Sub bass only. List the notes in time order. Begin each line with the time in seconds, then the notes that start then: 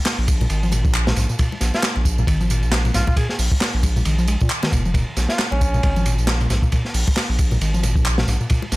0.18 A#1
0.50 G#1
0.85 A#1
1.17 A#1
1.61 A#1
1.96 A#1
2.27 G#1
2.63 A#1
2.95 A#1
3.39 A#1
3.74 A#1
4.06 A#1
4.42 A#2
4.72 F1
5.17 A#1
5.52 A#1
5.84 G#1
6.18 A#1
6.50 A#1
6.94 A#1
7.29 A#1
7.61 G#1
7.96 A#1
8.28 A#1
8.72 A#1